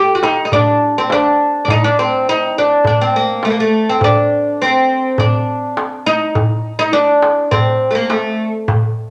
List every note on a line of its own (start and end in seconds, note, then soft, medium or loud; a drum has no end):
0.00 0.15 G4 loud
0.15 0.23 F#4 medium
0.23 0.44 D#4 medium
0.23 darbuka tek medium
0.45 0.52 D#4 medium
0.52 0.98 D4 medium
0.52 darbuka dum medium
0.82 darbuka ka soft
0.98 1.12 C4 medium
1.10 1.64 D4 medium
1.10 darbuka tek medium
1.65 1.69 D4 medium
1.65 darbuka dum medium
1.70 1.84 D#4 medium
1.84 1.99 D4 medium
1.99 2.28 C4 medium
2.12 darbuka ka soft
2.26 2.58 D#4 medium
2.26 darbuka ka soft
2.58 2.86 D4 medium
2.84 3.00 D4 medium
2.84 darbuka dum medium
3.01 3.15 C4 medium
3.16 3.45 A#3 medium
3.43 3.50 A3 medium
3.43 darbuka tek medium
3.50 3.57 A#3 medium
3.60 3.89 A3 medium
3.89 4.03 C4 medium
4.01 4.63 D4 medium
4.01 darbuka dum medium
4.16 darbuka ka soft
4.62 5.21 C4 medium
5.18 5.73 D4 medium
5.18 darbuka dum medium
5.48 darbuka ka soft
5.77 darbuka tek medium
6.06 6.78 D#4 medium
6.35 darbuka dum loud
6.50 darbuka ka soft
6.79 6.93 D#4 medium
6.93 7.47 D4 medium
7.22 darbuka tek medium
7.51 7.93 C4 medium
7.51 darbuka dum medium
7.81 darbuka ka soft
7.91 7.95 A3 medium
7.95 8.09 A#3 medium
8.10 8.50 A3 medium
8.10 darbuka tek medium
8.68 darbuka dum medium
8.82 darbuka ka soft